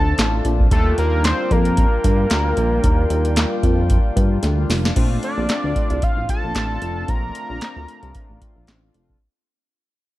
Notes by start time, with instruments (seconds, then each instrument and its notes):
Already playing: analog synth bass D2, analog polysynth A3 C4 D4 F4, brass ensemble D4 D5 A5, analog synth lead A5
0.18 analog synth bass A1, snare, clap, closed hi-hat
0.45 analog synth bass A#1, closed hi-hat
0.60 kick
0.71 analog synth bass D#2, analog polysynth G3 A#3 D4 F4, brass ensemble F4 G5, analog synth lead A4, kick, closed hi-hat
0.98 analog synth bass D#2, analog synth lead A#4, closed hi-hat
1.24 analog synth lead C5, snare, clap, closed hi-hat
1.51 analog synth bass F2, analog synth lead A#4, kick, closed hi-hat
1.65 closed hi-hat
1.77 kick, closed hi-hat
2.04 analog synth bass G2, kick, closed hi-hat
2.30 analog synth bass D2, snare, clap, closed hi-hat
2.57 analog synth bass A#1, closed hi-hat
2.84 analog synth bass D#2, kick, closed hi-hat
3.10 analog synth bass D#2, closed hi-hat
3.25 closed hi-hat
3.36 snare, clap, closed hi-hat
3.63 analog synth bass F2, kick, closed hi-hat
3.90 kick, closed hi-hat
4.16 analog synth bass G2, kick, closed hi-hat
4.43 analog synth bass D2, snare, closed hi-hat
4.70 analog synth bass F1, snare, open hi-hat
4.85 snare
4.95 analog synth bass A#1, analog polysynth A3 C4 D4 F4, brass ensemble D4 C5 F5, kick, closed hi-hat, crash
5.23 analog synth lead D5, closed hi-hat
5.37 analog synth bass A#1
5.49 snare, clap, closed hi-hat
5.64 analog synth bass D2
5.76 kick, closed hi-hat
5.90 analog synth bass C2, closed hi-hat
6.02 analog synth lead F5, kick, closed hi-hat
6.17 analog synth bass A1
6.29 analog synth lead A5, kick, closed hi-hat
6.44 analog synth bass A#1
6.55 analog synth bass A1, snare, clap, closed hi-hat
6.82 analog synth bass F1, closed hi-hat
7.08 analog synth bass A#1, brass ensemble D5, analog synth lead A#5, kick, closed hi-hat
7.35 closed hi-hat
7.50 analog synth bass A#1
7.61 snare, clap, closed hi-hat
7.76 analog synth bass D2
7.88 closed hi-hat
8.03 analog synth bass C2, closed hi-hat
8.15 kick, closed hi-hat
8.30 analog synth bass A1
8.41 kick, closed hi-hat
8.56 analog synth bass A#1
8.67 analog synth bass A1, snare, clap, closed hi-hat
8.94 analog synth bass F1, closed hi-hat
9.10 kick